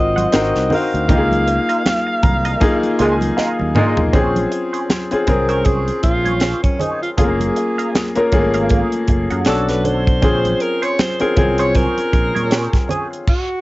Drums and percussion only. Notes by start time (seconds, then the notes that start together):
0.17 closed hi-hat, high conga
0.32 snare, closed hi-hat, muted conga
0.55 snare, closed hi-hat, muted conga
0.70 open hi-hat, low conga
0.95 closed hi-hat
1.09 kick, closed hi-hat, muted conga, low conga
1.32 closed hi-hat, high conga
1.48 closed hi-hat
1.69 closed hi-hat
1.86 snare, closed hi-hat, muted conga, high conga
2.23 kick, closed hi-hat, high conga, low conga
2.45 closed hi-hat
2.60 kick, closed hi-hat, high conga
2.83 closed hi-hat, muted conga
2.99 closed hi-hat
3.21 closed hi-hat, high conga
3.38 snare
3.59 muted conga, high conga
3.75 mid tom, low conga
3.97 floor tom
4.13 kick, closed hi-hat, muted conga, low conga
4.36 closed hi-hat, high conga
4.52 closed hi-hat
4.74 closed hi-hat
4.89 snare, closed hi-hat, muted conga, high conga
5.11 closed hi-hat
5.27 kick, closed hi-hat, high conga, low conga
5.49 closed hi-hat
5.65 kick, closed hi-hat, high conga
5.88 closed hi-hat, muted conga
6.03 kick, closed hi-hat
6.26 closed hi-hat, high conga
6.40 snare, closed hi-hat, muted conga
6.64 kick, closed hi-hat, muted conga, high conga
6.80 closed hi-hat, low conga
7.03 closed hi-hat
7.18 kick, closed hi-hat, muted conga, low conga
7.40 closed hi-hat, muted conga, high conga
7.56 closed hi-hat
7.79 closed hi-hat
7.95 snare, closed hi-hat, high conga
8.15 closed hi-hat, muted conga
8.32 kick, closed hi-hat, high conga, low conga
8.54 closed hi-hat
8.69 kick, closed hi-hat, high conga
8.92 closed hi-hat, muted conga
9.08 kick, closed hi-hat
9.31 closed hi-hat, high conga
9.45 snare, closed hi-hat
9.68 snare, closed hi-hat, high conga
9.85 closed hi-hat, low conga
10.07 kick, closed hi-hat
10.22 kick, closed hi-hat, low conga
10.45 closed hi-hat, high conga
10.60 closed hi-hat
10.83 closed hi-hat
10.99 snare, closed hi-hat, muted conga, high conga
11.20 closed hi-hat, muted conga
11.37 kick, closed hi-hat, high conga, low conga
11.58 closed hi-hat
11.75 kick, closed hi-hat, high conga
11.98 closed hi-hat, muted conga
12.13 kick, closed hi-hat
12.36 closed hi-hat, high conga
12.51 snare, closed hi-hat, muted conga
12.73 kick, snare, closed hi-hat, high conga
12.89 closed hi-hat, low conga
13.13 closed hi-hat
13.28 kick, crash